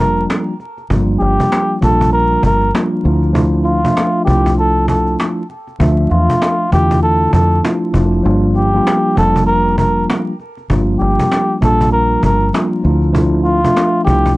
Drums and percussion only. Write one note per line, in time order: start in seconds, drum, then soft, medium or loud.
0.17 cajon slap soft
0.30 cajon slap medium
0.30 cajon slap loud
0.48 cajon slap soft
0.60 cajon slap soft
0.78 cajon slap soft
0.90 cajon bass loud
1.09 cajon slap soft
1.20 cajon slap soft
1.40 cajon bass medium
1.52 cajon slap medium
1.52 cajon slap loud
1.82 cajon bass medium
2.01 cajon bass medium
2.12 cajon slap soft
2.32 cajon slap soft
2.43 cajon bass loud
2.61 cajon slap soft
2.75 cajon slap medium
2.75 cajon slap loud
2.93 cajon slap soft
3.05 cajon slap soft
3.22 cajon slap soft
3.35 cajon bass loud
3.54 cajon slap soft
3.65 cajon slap soft
3.85 cajon bass medium
3.97 cajon slap medium
3.97 cajon slap loud
4.27 cajon bass medium
4.46 cajon bass medium
4.58 cajon slap soft
4.77 cajon slap soft
4.88 cajon bass loud
5.06 cajon slap soft
5.20 cajon slap medium
5.20 cajon slap loud
5.38 cajon slap soft
5.50 cajon slap soft
5.67 cajon slap soft
5.80 cajon bass loud
5.99 cajon slap soft
6.10 cajon slap soft
6.30 cajon bass medium
6.42 cajon slap medium
6.42 cajon slap loud
6.60 cajon slap soft
6.72 cajon bass medium
6.91 cajon bass medium
7.02 cajon slap soft
7.22 cajon slap soft
7.33 cajon bass medium
7.51 cajon slap soft
7.65 cajon slap medium
7.65 cajon slap loud
7.83 cajon slap soft
7.94 cajon bass medium
8.12 cajon slap soft
8.25 cajon slap soft
8.44 cajon slap soft
8.55 cajon slap soft
8.75 cajon slap soft
8.87 cajon slap medium
8.87 cajon slap loud
9.17 cajon bass medium
9.36 cajon bass medium
9.47 cajon slap soft
9.67 cajon slap soft
9.78 cajon bass loud
9.96 cajon slap soft
10.10 cajon slap medium
10.10 cajon slap loud
10.27 cajon slap soft
10.39 cajon slap soft
10.57 cajon slap soft
10.70 cajon bass loud
11.00 cajon slap soft
11.20 cajon bass medium
11.32 cajon slap medium
11.32 cajon slap loud
11.62 cajon bass medium
11.81 cajon bass medium
11.92 cajon slap soft
12.12 cajon slap soft
12.23 cajon bass medium
12.41 cajon slap soft
12.54 cajon slap medium
12.54 cajon slap loud
12.72 cajon slap soft
12.84 cajon slap soft
13.02 cajon slap soft
13.15 cajon bass loud
13.45 cajon slap soft
13.64 cajon bass medium
13.76 cajon slap medium
13.76 cajon slap loud
14.07 cajon bass medium
14.26 cajon bass medium